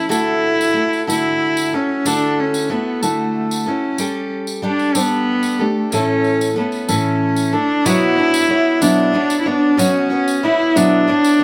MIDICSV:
0, 0, Header, 1, 5, 480
1, 0, Start_track
1, 0, Tempo, 645161
1, 83, Time_signature, 6, 3, 24, 8
1, 8510, End_track
2, 0, Start_track
2, 0, Title_t, "Steel-string acoustic guitar"
2, 0, Program_c, 0, 25
2, 66, Note_on_c, 0, 50, 66
2, 68, Note_on_c, 0, 57, 76
2, 71, Note_on_c, 0, 64, 71
2, 73, Note_on_c, 0, 66, 75
2, 77, Note_on_c, 0, 69, 81
2, 546, Note_off_c, 0, 57, 0
2, 548, Note_off_c, 0, 64, 0
2, 549, Note_on_c, 0, 57, 58
2, 554, Note_off_c, 0, 66, 0
2, 557, Note_on_c, 0, 64, 53
2, 563, Note_on_c, 0, 66, 60
2, 565, Note_off_c, 0, 69, 0
2, 568, Note_on_c, 0, 69, 66
2, 580, Note_off_c, 0, 50, 0
2, 789, Note_off_c, 0, 69, 0
2, 795, Note_off_c, 0, 64, 0
2, 795, Note_off_c, 0, 66, 0
2, 797, Note_off_c, 0, 57, 0
2, 798, Note_on_c, 0, 69, 64
2, 804, Note_on_c, 0, 64, 53
2, 804, Note_on_c, 0, 66, 62
2, 807, Note_on_c, 0, 57, 60
2, 810, Note_on_c, 0, 50, 54
2, 1284, Note_off_c, 0, 64, 0
2, 1284, Note_off_c, 0, 66, 0
2, 1284, Note_off_c, 0, 69, 0
2, 1287, Note_on_c, 0, 69, 51
2, 1288, Note_off_c, 0, 50, 0
2, 1293, Note_on_c, 0, 66, 45
2, 1303, Note_on_c, 0, 64, 43
2, 1522, Note_off_c, 0, 64, 0
2, 1526, Note_off_c, 0, 66, 0
2, 1526, Note_off_c, 0, 69, 0
2, 1527, Note_on_c, 0, 50, 81
2, 1529, Note_off_c, 0, 57, 0
2, 1531, Note_on_c, 0, 64, 70
2, 1532, Note_on_c, 0, 57, 77
2, 1535, Note_on_c, 0, 66, 74
2, 1536, Note_on_c, 0, 69, 86
2, 1996, Note_off_c, 0, 64, 0
2, 2001, Note_off_c, 0, 57, 0
2, 2002, Note_off_c, 0, 66, 0
2, 2004, Note_on_c, 0, 57, 58
2, 2005, Note_on_c, 0, 64, 55
2, 2006, Note_off_c, 0, 50, 0
2, 2010, Note_on_c, 0, 66, 64
2, 2013, Note_off_c, 0, 69, 0
2, 2016, Note_on_c, 0, 69, 59
2, 2241, Note_off_c, 0, 69, 0
2, 2245, Note_off_c, 0, 57, 0
2, 2245, Note_off_c, 0, 64, 0
2, 2245, Note_off_c, 0, 66, 0
2, 2250, Note_on_c, 0, 69, 68
2, 2254, Note_on_c, 0, 66, 66
2, 2258, Note_on_c, 0, 57, 55
2, 2258, Note_on_c, 0, 64, 59
2, 2262, Note_on_c, 0, 50, 56
2, 2719, Note_off_c, 0, 69, 0
2, 2722, Note_on_c, 0, 69, 45
2, 2724, Note_off_c, 0, 66, 0
2, 2729, Note_off_c, 0, 64, 0
2, 2733, Note_on_c, 0, 66, 49
2, 2734, Note_off_c, 0, 50, 0
2, 2738, Note_on_c, 0, 64, 45
2, 2960, Note_off_c, 0, 57, 0
2, 2963, Note_on_c, 0, 55, 74
2, 2964, Note_off_c, 0, 69, 0
2, 2968, Note_off_c, 0, 66, 0
2, 2971, Note_on_c, 0, 67, 86
2, 2972, Note_off_c, 0, 64, 0
2, 2973, Note_on_c, 0, 69, 80
2, 3429, Note_off_c, 0, 55, 0
2, 3438, Note_on_c, 0, 55, 57
2, 3441, Note_off_c, 0, 67, 0
2, 3446, Note_on_c, 0, 62, 67
2, 3450, Note_on_c, 0, 67, 63
2, 3451, Note_off_c, 0, 69, 0
2, 3454, Note_on_c, 0, 69, 69
2, 3673, Note_off_c, 0, 69, 0
2, 3675, Note_off_c, 0, 67, 0
2, 3678, Note_off_c, 0, 62, 0
2, 3682, Note_off_c, 0, 55, 0
2, 3682, Note_on_c, 0, 69, 68
2, 3684, Note_on_c, 0, 67, 69
2, 3687, Note_on_c, 0, 62, 59
2, 3690, Note_on_c, 0, 55, 52
2, 4150, Note_off_c, 0, 69, 0
2, 4159, Note_on_c, 0, 69, 54
2, 4161, Note_off_c, 0, 67, 0
2, 4167, Note_off_c, 0, 62, 0
2, 4168, Note_off_c, 0, 55, 0
2, 4170, Note_on_c, 0, 67, 48
2, 4175, Note_on_c, 0, 62, 45
2, 4403, Note_off_c, 0, 69, 0
2, 4408, Note_off_c, 0, 67, 0
2, 4408, Note_on_c, 0, 52, 81
2, 4409, Note_on_c, 0, 45, 79
2, 4410, Note_on_c, 0, 57, 66
2, 4411, Note_off_c, 0, 62, 0
2, 4414, Note_on_c, 0, 61, 80
2, 4417, Note_on_c, 0, 64, 72
2, 4419, Note_on_c, 0, 69, 80
2, 4870, Note_off_c, 0, 57, 0
2, 4878, Note_off_c, 0, 61, 0
2, 4879, Note_on_c, 0, 57, 60
2, 4881, Note_off_c, 0, 64, 0
2, 4886, Note_off_c, 0, 69, 0
2, 4887, Note_off_c, 0, 52, 0
2, 4887, Note_on_c, 0, 61, 51
2, 4888, Note_off_c, 0, 45, 0
2, 4890, Note_on_c, 0, 64, 59
2, 4895, Note_on_c, 0, 69, 60
2, 5112, Note_off_c, 0, 69, 0
2, 5117, Note_off_c, 0, 61, 0
2, 5117, Note_off_c, 0, 64, 0
2, 5120, Note_off_c, 0, 57, 0
2, 5121, Note_on_c, 0, 69, 70
2, 5125, Note_on_c, 0, 64, 65
2, 5126, Note_on_c, 0, 61, 62
2, 5129, Note_on_c, 0, 52, 62
2, 5129, Note_on_c, 0, 57, 57
2, 5130, Note_on_c, 0, 45, 60
2, 5591, Note_off_c, 0, 69, 0
2, 5596, Note_off_c, 0, 64, 0
2, 5600, Note_on_c, 0, 69, 57
2, 5605, Note_off_c, 0, 61, 0
2, 5605, Note_on_c, 0, 64, 49
2, 5607, Note_off_c, 0, 45, 0
2, 5607, Note_off_c, 0, 52, 0
2, 5607, Note_off_c, 0, 57, 0
2, 5618, Note_on_c, 0, 57, 42
2, 5840, Note_off_c, 0, 57, 0
2, 5840, Note_on_c, 0, 47, 78
2, 5842, Note_off_c, 0, 69, 0
2, 5843, Note_on_c, 0, 59, 94
2, 5845, Note_off_c, 0, 64, 0
2, 5847, Note_on_c, 0, 54, 77
2, 5848, Note_on_c, 0, 62, 87
2, 5850, Note_on_c, 0, 66, 87
2, 5855, Note_on_c, 0, 73, 91
2, 6072, Note_off_c, 0, 73, 0
2, 6078, Note_off_c, 0, 66, 0
2, 6081, Note_on_c, 0, 73, 53
2, 6082, Note_off_c, 0, 47, 0
2, 6082, Note_off_c, 0, 62, 0
2, 6084, Note_off_c, 0, 59, 0
2, 6086, Note_off_c, 0, 54, 0
2, 6086, Note_on_c, 0, 66, 47
2, 6091, Note_on_c, 0, 62, 46
2, 6096, Note_on_c, 0, 59, 44
2, 6302, Note_off_c, 0, 59, 0
2, 6310, Note_off_c, 0, 62, 0
2, 6311, Note_on_c, 0, 59, 57
2, 6313, Note_off_c, 0, 66, 0
2, 6319, Note_off_c, 0, 73, 0
2, 6319, Note_on_c, 0, 62, 64
2, 6322, Note_on_c, 0, 66, 69
2, 6328, Note_on_c, 0, 73, 66
2, 6546, Note_off_c, 0, 73, 0
2, 6550, Note_off_c, 0, 66, 0
2, 6551, Note_off_c, 0, 62, 0
2, 6555, Note_off_c, 0, 59, 0
2, 6555, Note_on_c, 0, 73, 74
2, 6559, Note_on_c, 0, 66, 62
2, 6560, Note_on_c, 0, 62, 72
2, 6564, Note_on_c, 0, 54, 63
2, 6564, Note_on_c, 0, 59, 65
2, 6567, Note_on_c, 0, 47, 60
2, 6784, Note_off_c, 0, 59, 0
2, 6792, Note_off_c, 0, 62, 0
2, 6793, Note_on_c, 0, 59, 59
2, 6798, Note_off_c, 0, 66, 0
2, 6799, Note_off_c, 0, 73, 0
2, 6801, Note_on_c, 0, 62, 60
2, 6803, Note_off_c, 0, 54, 0
2, 6805, Note_off_c, 0, 47, 0
2, 6807, Note_on_c, 0, 66, 72
2, 6810, Note_on_c, 0, 73, 62
2, 7027, Note_off_c, 0, 73, 0
2, 7031, Note_off_c, 0, 66, 0
2, 7036, Note_on_c, 0, 73, 60
2, 7037, Note_off_c, 0, 62, 0
2, 7038, Note_off_c, 0, 59, 0
2, 7040, Note_on_c, 0, 66, 50
2, 7046, Note_on_c, 0, 62, 51
2, 7051, Note_on_c, 0, 59, 49
2, 7271, Note_off_c, 0, 59, 0
2, 7271, Note_on_c, 0, 47, 83
2, 7277, Note_off_c, 0, 66, 0
2, 7277, Note_off_c, 0, 73, 0
2, 7277, Note_on_c, 0, 54, 91
2, 7280, Note_on_c, 0, 59, 82
2, 7284, Note_off_c, 0, 62, 0
2, 7285, Note_on_c, 0, 73, 87
2, 7286, Note_on_c, 0, 66, 101
2, 7505, Note_off_c, 0, 73, 0
2, 7514, Note_off_c, 0, 66, 0
2, 7514, Note_on_c, 0, 73, 53
2, 7516, Note_off_c, 0, 47, 0
2, 7519, Note_off_c, 0, 54, 0
2, 7520, Note_off_c, 0, 59, 0
2, 7523, Note_on_c, 0, 66, 52
2, 7531, Note_on_c, 0, 59, 45
2, 7752, Note_off_c, 0, 59, 0
2, 7757, Note_off_c, 0, 73, 0
2, 7761, Note_off_c, 0, 66, 0
2, 7761, Note_on_c, 0, 59, 64
2, 7764, Note_on_c, 0, 62, 61
2, 7774, Note_on_c, 0, 66, 68
2, 7778, Note_on_c, 0, 73, 67
2, 7993, Note_off_c, 0, 73, 0
2, 7996, Note_off_c, 0, 62, 0
2, 7996, Note_off_c, 0, 66, 0
2, 8000, Note_off_c, 0, 59, 0
2, 8002, Note_on_c, 0, 73, 73
2, 8005, Note_on_c, 0, 62, 70
2, 8005, Note_on_c, 0, 66, 74
2, 8009, Note_on_c, 0, 59, 70
2, 8012, Note_on_c, 0, 47, 59
2, 8013, Note_on_c, 0, 54, 61
2, 8232, Note_off_c, 0, 59, 0
2, 8237, Note_off_c, 0, 62, 0
2, 8240, Note_off_c, 0, 73, 0
2, 8240, Note_on_c, 0, 59, 54
2, 8242, Note_off_c, 0, 66, 0
2, 8245, Note_off_c, 0, 47, 0
2, 8246, Note_off_c, 0, 54, 0
2, 8246, Note_on_c, 0, 62, 61
2, 8254, Note_on_c, 0, 66, 64
2, 8255, Note_on_c, 0, 73, 69
2, 8465, Note_off_c, 0, 73, 0
2, 8474, Note_off_c, 0, 66, 0
2, 8474, Note_on_c, 0, 73, 56
2, 8477, Note_off_c, 0, 62, 0
2, 8479, Note_off_c, 0, 59, 0
2, 8483, Note_on_c, 0, 66, 64
2, 8486, Note_on_c, 0, 62, 56
2, 8510, Note_off_c, 0, 62, 0
2, 8510, Note_off_c, 0, 66, 0
2, 8510, Note_off_c, 0, 73, 0
2, 8510, End_track
3, 0, Start_track
3, 0, Title_t, "Twelve-string acoustic guitar"
3, 0, Program_c, 1, 25
3, 6329, Note_on_c, 1, 64, 72
3, 6796, Note_off_c, 1, 64, 0
3, 7763, Note_on_c, 1, 64, 75
3, 8231, Note_off_c, 1, 64, 0
3, 8510, End_track
4, 0, Start_track
4, 0, Title_t, "Cello"
4, 0, Program_c, 2, 42
4, 0, Note_on_c, 2, 64, 95
4, 87, Note_off_c, 2, 64, 0
4, 92, Note_on_c, 2, 64, 100
4, 778, Note_off_c, 2, 64, 0
4, 819, Note_on_c, 2, 64, 94
4, 1297, Note_on_c, 2, 61, 80
4, 1308, Note_off_c, 2, 64, 0
4, 1534, Note_on_c, 2, 62, 94
4, 1545, Note_off_c, 2, 61, 0
4, 1784, Note_on_c, 2, 61, 79
4, 1795, Note_off_c, 2, 62, 0
4, 2014, Note_on_c, 2, 59, 71
4, 2026, Note_off_c, 2, 61, 0
4, 2244, Note_on_c, 2, 57, 81
4, 2255, Note_off_c, 2, 59, 0
4, 2733, Note_on_c, 2, 61, 76
4, 2744, Note_off_c, 2, 57, 0
4, 3210, Note_off_c, 2, 61, 0
4, 3471, Note_on_c, 2, 62, 84
4, 3713, Note_on_c, 2, 59, 96
4, 3724, Note_off_c, 2, 62, 0
4, 4177, Note_on_c, 2, 57, 81
4, 4188, Note_off_c, 2, 59, 0
4, 4412, Note_off_c, 2, 57, 0
4, 4419, Note_on_c, 2, 61, 94
4, 4863, Note_off_c, 2, 61, 0
4, 4896, Note_on_c, 2, 59, 64
4, 5134, Note_on_c, 2, 61, 75
4, 5146, Note_off_c, 2, 59, 0
4, 5604, Note_on_c, 2, 62, 86
4, 5615, Note_off_c, 2, 61, 0
4, 5844, Note_on_c, 2, 64, 104
4, 5855, Note_off_c, 2, 62, 0
4, 6560, Note_on_c, 2, 62, 86
4, 6571, Note_off_c, 2, 64, 0
4, 6989, Note_off_c, 2, 62, 0
4, 6993, Note_on_c, 2, 64, 66
4, 7044, Note_on_c, 2, 62, 80
4, 7055, Note_off_c, 2, 64, 0
4, 7282, Note_on_c, 2, 61, 95
4, 7293, Note_off_c, 2, 62, 0
4, 7776, Note_on_c, 2, 64, 91
4, 7787, Note_off_c, 2, 61, 0
4, 8007, Note_on_c, 2, 62, 105
4, 8019, Note_off_c, 2, 64, 0
4, 8510, Note_off_c, 2, 62, 0
4, 8510, End_track
5, 0, Start_track
5, 0, Title_t, "Drums"
5, 85, Note_on_c, 9, 54, 96
5, 159, Note_off_c, 9, 54, 0
5, 452, Note_on_c, 9, 54, 69
5, 527, Note_off_c, 9, 54, 0
5, 693, Note_on_c, 9, 54, 24
5, 767, Note_off_c, 9, 54, 0
5, 816, Note_on_c, 9, 54, 90
5, 891, Note_off_c, 9, 54, 0
5, 1168, Note_on_c, 9, 54, 72
5, 1242, Note_off_c, 9, 54, 0
5, 1530, Note_on_c, 9, 54, 84
5, 1605, Note_off_c, 9, 54, 0
5, 1890, Note_on_c, 9, 54, 66
5, 1964, Note_off_c, 9, 54, 0
5, 2251, Note_on_c, 9, 54, 81
5, 2326, Note_off_c, 9, 54, 0
5, 2614, Note_on_c, 9, 54, 67
5, 2688, Note_off_c, 9, 54, 0
5, 2963, Note_on_c, 9, 54, 85
5, 3038, Note_off_c, 9, 54, 0
5, 3326, Note_on_c, 9, 54, 60
5, 3401, Note_off_c, 9, 54, 0
5, 3566, Note_on_c, 9, 54, 24
5, 3641, Note_off_c, 9, 54, 0
5, 3682, Note_on_c, 9, 54, 89
5, 3756, Note_off_c, 9, 54, 0
5, 4038, Note_on_c, 9, 54, 59
5, 4113, Note_off_c, 9, 54, 0
5, 4405, Note_on_c, 9, 54, 74
5, 4479, Note_off_c, 9, 54, 0
5, 4645, Note_on_c, 9, 54, 23
5, 4719, Note_off_c, 9, 54, 0
5, 4770, Note_on_c, 9, 54, 68
5, 4845, Note_off_c, 9, 54, 0
5, 5000, Note_on_c, 9, 54, 25
5, 5074, Note_off_c, 9, 54, 0
5, 5123, Note_on_c, 9, 54, 80
5, 5198, Note_off_c, 9, 54, 0
5, 5479, Note_on_c, 9, 54, 67
5, 5554, Note_off_c, 9, 54, 0
5, 5847, Note_on_c, 9, 54, 103
5, 5921, Note_off_c, 9, 54, 0
5, 6203, Note_on_c, 9, 54, 84
5, 6278, Note_off_c, 9, 54, 0
5, 6560, Note_on_c, 9, 54, 92
5, 6635, Note_off_c, 9, 54, 0
5, 6920, Note_on_c, 9, 54, 78
5, 6994, Note_off_c, 9, 54, 0
5, 7285, Note_on_c, 9, 54, 97
5, 7360, Note_off_c, 9, 54, 0
5, 7646, Note_on_c, 9, 54, 71
5, 7720, Note_off_c, 9, 54, 0
5, 8011, Note_on_c, 9, 54, 88
5, 8085, Note_off_c, 9, 54, 0
5, 8366, Note_on_c, 9, 54, 70
5, 8441, Note_off_c, 9, 54, 0
5, 8510, End_track
0, 0, End_of_file